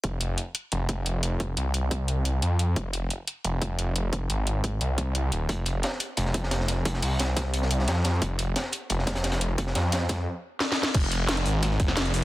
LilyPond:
<<
  \new Staff \with { instrumentName = "Detuned saw bass" } { \clef bass \time 4/4 \key f \minor \tempo 4 = 176 f,,4 r4 f,,2~ | f,,8 c,2~ c,8 f,4 | f,,4 r4 f,,2~ | f,,8 aes,,4. c,4. ees,,8 |
f,,4 r4 f,,2~ | f,,8 c,2~ c,8 f,4 | f,,4 r4 f,,2~ | f,,8 f,4. r2 |
f,,4. aes,,4 f,,4 f,,8 | }
  \new DrumStaff \with { instrumentName = "Drums" } \drummode { \time 4/4 <hh bd>8 hh8 hh8 hh8 hh8 <hh bd>8 hh8 hh8 | <hh bd>8 hh8 hh8 <hh bd>8 hh8 hh8 hh8 hh8 | <hh bd>8 hh8 hh8 hh8 hh8 <hh bd>8 hh8 hh8 | <hh bd>8 hh8 hh8 <hh bd>8 hh8 <hh bd>8 hh8 hh8 |
<hh bd>8 hh8 <hh sn>8 hh8 hh16 sn16 <hh bd>16 sn16 <hh sn>16 sn16 <hh sn>8 | <hh bd>16 sn16 <hh hho>8 <hh sn>8 <hh bd sn>8 hh16 sn16 hh16 sn16 <hh sn>16 sn16 <hh sn>8 | <hh bd>8 hh8 <hh sn>8 hh8 hh16 sn16 <hh bd sn>16 <hh sn>16 <hh sn>16 <hh sn>16 hh8 | <hh bd>16 sn16 <hh sn>8 <hh sn>8 <hh bd sn>8 r4 \tuplet 3/2 { sn8 sn8 sn8 } |
<cymc hh bd>8 hh8 <hh sn>16 hh16 <hh hho>8 <hh sn>16 sn16 <hh bd>16 sn16 <hh sn>16 <hh sn>16 <hh hho sn>8 | }
>>